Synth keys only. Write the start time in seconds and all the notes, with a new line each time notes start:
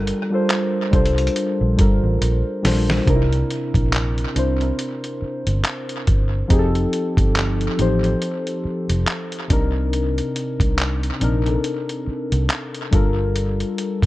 Already playing: G3 D4 F4 A4 A#4
0.30 G3 D4 F4 A4
0.35 C5
0.91 G3 D4 F4 A4
0.95 C5
1.76 G3 D4 F4 A4
1.81 A#4
2.62 G3 D4 F4 A4
2.67 C5
3.05 C3 C4 D4 D#4
3.10 A#4
3.15 E4
4.34 C3 C4 D4 E4
4.39 C5
4.58 C3 C4 D4 E4
4.63 A#4
6.48 F3 C4 D#4 G4
6.52 G#4
6.59 A4
7.77 F3 C4 D#4 G4
7.81 C5
8.02 F3 C4 D#4 G4
8.06 C5
9.48 C3 C4 D4 D#4
9.53 A#4
11.19 C3 C4 D4 D#4
11.24 A#4
11.44 C3 C4 D4 D#4
11.49 A4
11.55 A#4
12.91 G3 D4 F4 A4
12.95 A#4